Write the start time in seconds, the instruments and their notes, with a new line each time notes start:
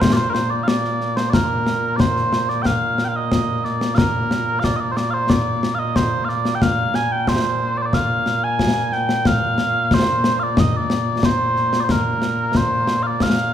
Already playing: bagpipes A#2 A#3
0.01 bagpipes C5, concert bass drum, snare
0.13 bagpipes C5 D5
0.30 bagpipes A#4 C5
0.35 snare
0.51 bagpipes D5
0.63 bagpipes F5
0.68 bagpipes D5, snare
0.84 snare
1.01 snare
1.17 bagpipes C5, snare
1.30 bagpipes A#4 D5, concert bass drum, snare
1.67 snare
1.97 bagpipes C5 D5, concert bass drum, snare
2.16 snare
2.33 snare
2.49 bagpipes D5, snare
2.62 bagpipes G5, concert bass drum, snare
2.66 bagpipes F5
2.98 snare
3.05 bagpipes F5 G5
3.16 bagpipes D#5
3.32 concert bass drum, snare
3.64 bagpipes D5, snare
3.81 snare
3.95 bagpipes A#4 F5, concert bass drum, snare
4.31 snare
4.60 bagpipes F5
4.64 bagpipes D5, concert bass drum, snare
4.76 bagpipes D5 D#5
4.92 bagpipes C5
4.97 bagpipes D5, snare
5.10 bagpipes C5 F5
5.30 bagpipes D5, concert bass drum, snare
5.63 snare
5.75 bagpipes F5
5.79 bagpipes D#5
5.96 bagpipes C5, concert bass drum, snare
6.25 bagpipes D5 F5
6.29 snare
6.45 snare
6.55 bagpipes G5
6.62 bagpipes F5, concert bass drum, snare
6.94 bagpipes G#5, snare
7.12 bagpipes G5
7.27 bagpipes C5, concert bass drum, snare
7.78 bagpipes D5
7.82 bagpipes C5 D5
7.93 bagpipes F5, concert bass drum, snare
8.26 snare
8.44 bagpipes G#5
8.59 concert bass drum, snare
8.92 bagpipes G5, snare
9.09 snare
9.25 bagpipes F5, concert bass drum, snare
9.58 snare
9.91 bagpipes C5, concert bass drum, snare
10.24 snare
10.40 bagpipes D5 F5
10.57 bagpipes D#5, concert bass drum, snare
10.76 bagpipes D5
10.90 snare
11.23 bagpipes C5, concert bass drum, snare
11.56 snare
11.73 snare
11.80 bagpipes C5 D5
11.89 bagpipes A#4, concert bass drum, snare
12.22 snare
12.55 bagpipes C5, concert bass drum, snare
12.88 snare
13.03 bagpipes D5 F5
13.20 bagpipes F5, concert bass drum, snare